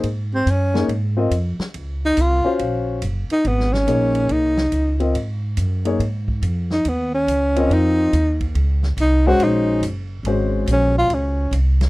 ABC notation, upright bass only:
X:1
M:4/4
L:1/8
Q:"Swing" 1/4=141
K:Abmix
V:1 name="Upright bass" clef=bass
A,,2 G,,2 A,,2 F,, z | D,,2 C,, z B,,,2 G,,, z | A,,,2 B,,,2 C,,2 D,,2 | A,,2 G,,2 A,,2 F,,2 |
E,,2 D,,2 F,,2 E,,2 | D,,2 C,,2 B,,,2 G,,,2 | A,,,2 B,,,2 D,,2 C,,2 |]